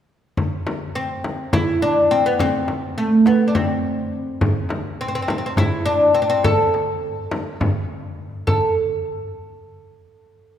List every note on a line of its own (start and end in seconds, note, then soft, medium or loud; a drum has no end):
0.37 frame drum medium
0.67 frame drum medium
0.95 1.55 C4 medium
1.24 frame drum medium
1.53 1.82 E4 medium
1.53 frame drum medium
1.82 2.11 D4 medium
2.11 2.26 C4 medium
2.26 2.40 B3 medium
2.39 2.94 C4 medium
2.39 frame drum medium
2.68 frame drum medium
2.98 3.26 A3 medium
3.26 3.49 B3 medium
3.26 frame drum medium
3.48 3.55 D4 medium
3.55 4.16 C4 medium
3.55 frame drum medium
4.41 darbuka dum medium
4.41 frame drum medium
4.69 darbuka tek medium
4.69 frame drum medium
5.01 5.07 C4 medium
5.08 5.14 C4 medium
5.15 5.21 C4 medium
5.22 5.29 C4 medium
5.28 5.37 C4 medium
5.28 darbuka tek medium
5.28 frame drum medium
5.38 5.45 C4 soft
5.46 5.52 C4 medium
5.56 5.85 E4 medium
5.56 darbuka dum medium
5.56 frame drum medium
5.86 6.14 D4 medium
5.86 darbuka ka soft
6.15 6.22 C4 medium
6.22 6.29 D4 medium
6.30 6.44 C4 medium
6.44 7.85 A4 medium
6.44 darbuka dum medium
6.44 frame drum medium
6.74 darbuka tek medium
7.03 darbuka ka soft
7.31 darbuka tek medium
7.31 frame drum medium
7.60 darbuka dum medium
7.60 frame drum medium
8.47 8.74 A4 medium
8.47 darbuka dum medium
8.47 frame drum medium